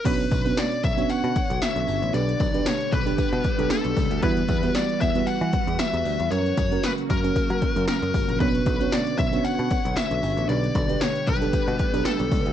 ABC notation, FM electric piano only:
X:1
M:4/4
L:1/16
Q:"Swing 16ths" 1/4=115
K:Bm
V:1 name="FM electric piano"
[B,CDFc]2 z [B,CDFB]2 z2 [B,CDFc]4- [B,CDFc] z4 | [DGB]2 z [DGB]2 z2 [DGB]2 z2 [DGA]3 z2 | [G,B,EFB]2 z [G,B,EFB]2 z2 [G,B,EFB]4- [G,B,EFB] z4 | [CF^A]2 z [CFA]2 z2 [CFA]2 z2 [CFA]3 z2 |
[B,CDFc]2 z [B,CDFc]2 z2 [B,CDFc]4- [B,CDFc] z4 | [DGB]2 z [DGB]2 z2 [DGA]2 z2 [DGB]3 z2 |]
V:2 name="FM electric piano" clef=bass
B,,6 z8 z2 | B,,6 z8 z2 | E,6 z8 z2 | z16 |
B,,6 z8 z2 | B,,6 z8 z2 |]